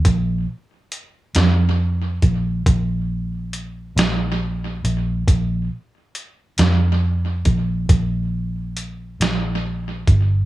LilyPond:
<<
  \new Staff \with { instrumentName = "Fingered electric bass" } { \clef bass \time 12/8 \key c \minor \tempo 4. = 46 bes,,8 r4 f,4 bes,,8 bes,,4. bes,,4 bes,,8 | bes,,8 r4 f,4 bes,,8 bes,,4. bes,,4 g,,8 | }
  \new DrumStaff \with { instrumentName = "Drums" } \drummode { \time 12/8 <hh bd>4 hh8 <hh sn>4 <hh bd>8 <hh bd>4 hh8 <hh sn>4 hh8 | <hh bd>4 hh8 <hh sn>4 <hh bd>8 <hh bd>4 hh8 <hh sn>4 <hh bd>8 | }
>>